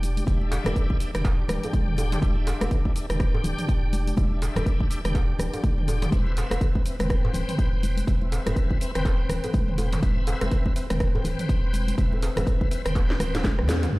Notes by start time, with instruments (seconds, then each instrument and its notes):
Already playing: sub bass E1, tonewheel organ D4 G4 G5
0.02 open hi-hat, muted conga, high conga, shaker
0.17 closed hi-hat, high conga, shaker
0.26 sub bass E1, tonewheel organ D4 G4 E5, kick, closed hi-hat, high conga, shaker
0.41 muted conga
0.52 open hi-hat, djembe slap, shaker
0.64 sub bass E1, cross-stick, closed hi-hat, muted conga, high conga, djembe tone, low conga, djembe bass, shaker
0.76 kick, closed hi-hat, shaker
0.89 kick, muted conga
1.00 tonewheel organ D4 G4 E5, open hi-hat, shaker
1.14 sub bass E1, tonewheel organ D4 G4 G5, cross-stick, closed hi-hat, mid tom, muted conga, shaker
1.25 kick, closed hi-hat, djembe slap, shaker
1.48 sub bass D1, cross-stick, open hi-hat, muted conga, high conga, low conga, shaker
1.63 closed hi-hat, djembe tone, shaker
1.72 kick, closed hi-hat, muted conga, high conga, shaker
1.88 sub bass E1, mid tom
1.97 open hi-hat, muted conga, djembe tone, shaker
2.12 closed hi-hat, mid tom, djembe slap, shaker
2.22 sub bass E1, tonewheel organ D4 G4 E5, kick, closed hi-hat, high conga, shaker
2.36 muted conga
2.47 open hi-hat, djembe slap, shaker
2.61 sub bass E1, cross-stick, closed hi-hat, muted conga, high conga, djembe tone, shaker
2.71 kick, closed hi-hat, shaker
2.85 kick, muted conga
2.95 tonewheel organ D4 G4 E5, open hi-hat, shaker
3.09 sub bass E1, tonewheel organ D4 G4 G5, cross-stick, closed hi-hat, mid tom, muted conga, high conga, shaker
3.20 kick, cross-stick, closed hi-hat, shaker
3.34 djembe slap, djembe bass
3.44 sub bass D1, open hi-hat, muted conga, high conga, low conga, shaker
3.59 closed hi-hat, mid tom, shaker
3.68 kick, closed hi-hat, muted conga, shaker
3.83 sub bass E1
3.93 open hi-hat, muted conga, high conga, shaker
4.07 closed hi-hat, high conga, shaker
4.17 sub bass E1, tonewheel organ D4 G4 E5, kick, closed hi-hat, high conga, shaker
4.31 muted conga
4.42 open hi-hat, djembe slap, shaker
4.56 sub bass E1, cross-stick, closed hi-hat, muted conga, djembe tone, high conga, low conga, djembe bass, shaker
4.66 kick, closed hi-hat, shaker
4.80 kick, muted conga
4.90 tonewheel organ D4 G4 E5, open hi-hat, shaker
5.04 sub bass E1, tonewheel organ D4 G4 G5, cross-stick, closed hi-hat, mid tom, muted conga, high conga, shaker
5.15 kick, closed hi-hat, djembe slap, shaker
5.39 sub bass D1, cross-stick, open hi-hat, muted conga, high conga, low conga, shaker
5.54 closed hi-hat, djembe tone, shaker
5.64 kick, closed hi-hat, muted conga, high conga, shaker
5.78 sub bass E1, mid tom
5.88 open hi-hat, muted conga, djembe tone, shaker
6.02 closed hi-hat, mid tom, djembe slap, shaker
6.11 sub bass E1, tonewheel organ C4 B4 E5, kick, closed hi-hat, high conga, shaker
6.26 muted conga
6.37 open hi-hat, djembe slap, shaker
6.51 sub bass E1, cross-stick, closed hi-hat, muted conga, high conga, djembe tone, shaker
6.61 kick, closed hi-hat, shaker
6.75 kick, muted conga
6.85 tonewheel organ C4 B4 E5, open hi-hat, shaker
6.99 sub bass E1, tonewheel organ C4 B4 G5, cross-stick, closed hi-hat, mid tom, muted conga, high conga, shaker
7.10 kick, cross-stick, closed hi-hat, shaker
7.25 djembe slap, djembe bass
7.33 sub bass D1, open hi-hat, muted conga, high conga, low conga, shaker
7.49 closed hi-hat, mid tom, shaker
7.58 kick, closed hi-hat, muted conga, shaker
7.73 sub bass E1
7.83 open hi-hat, muted conga, high conga, shaker
7.97 closed hi-hat, high conga, shaker
8.07 sub bass E1, tonewheel organ C4 B4 E5, kick, closed hi-hat, high conga, shaker
8.21 muted conga
8.32 open hi-hat, djembe slap, shaker
8.46 sub bass E1, cross-stick, closed hi-hat, muted conga, high conga, djembe tone, low conga, djembe bass, shaker
8.56 kick, closed hi-hat, shaker
8.71 kick, muted conga
8.80 tonewheel organ C4 B4 E5, open hi-hat, shaker
8.95 sub bass E1, tonewheel organ C4 B4 G5, cross-stick, closed hi-hat, mid tom, muted conga, shaker
9.05 kick, closed hi-hat, djembe slap, shaker
9.29 sub bass D1, cross-stick, open hi-hat, muted conga, high conga, low conga, shaker
9.44 closed hi-hat, djembe tone, shaker
9.53 kick, closed hi-hat, muted conga, high conga, shaker
9.68 sub bass E1, mid tom
9.78 open hi-hat, muted conga, djembe tone, shaker
9.93 closed hi-hat, mid tom, djembe slap, shaker
10.02 sub bass E1, tonewheel organ C4 B4 E5, kick, closed hi-hat, high conga, shaker
10.17 muted conga
10.27 open hi-hat, djembe slap, shaker
10.41 sub bass E1, cross-stick, closed hi-hat, muted conga, djembe tone, high conga, shaker
10.51 kick, closed hi-hat, shaker
10.66 kick, muted conga
10.76 tonewheel organ C4 B4 E5, open hi-hat, shaker
10.90 sub bass E1, tonewheel organ C4 B4 G5, cross-stick, closed hi-hat, mid tom, muted conga, high conga, shaker
11.00 kick, cross-stick, closed hi-hat, shaker
11.15 djembe slap, djembe bass
11.24 sub bass D1, open hi-hat, muted conga, high conga, low conga, shaker
11.39 closed hi-hat, mid tom, shaker
11.49 kick, closed hi-hat, muted conga, shaker
11.63 sub bass E1
11.73 open hi-hat, muted conga, high conga, shaker
11.88 closed hi-hat, high conga, shaker
11.98 sub bass E1, tonewheel organ C4 B4 E5, kick, closed hi-hat, high conga, shaker
12.12 muted conga, djembe tone
12.23 open hi-hat, djembe slap, shaker
12.36 sub bass E1, cross-stick, closed hi-hat, muted conga, djembe tone, high conga, low conga, djembe bass, shaker
12.47 kick, closed hi-hat, shaker
12.61 kick, muted conga
12.71 tonewheel organ C4 B4 E5, open hi-hat, shaker
12.85 sub bass E1, tonewheel organ C4 B4 G5, cross-stick, closed hi-hat, mid tom, muted conga, high conga, shaker
12.95 kick, closed hi-hat, high tom, djembe slap, shaker
13.10 snare
13.20 sub bass D1, cross-stick, open hi-hat, muted conga, high conga, low conga, shaker
13.34 snare, closed hi-hat, djembe tone, shaker
13.44 kick, snare, closed hi-hat, muted conga, high conga, shaker
13.58 sub bass E2, cross-stick, mid tom
13.68 snare, open hi-hat, muted conga, djembe tone, shaker
13.83 closed hi-hat, mid tom, djembe slap, shaker
13.93 tonewheel organ D4 G4 E5, sub drop, high conga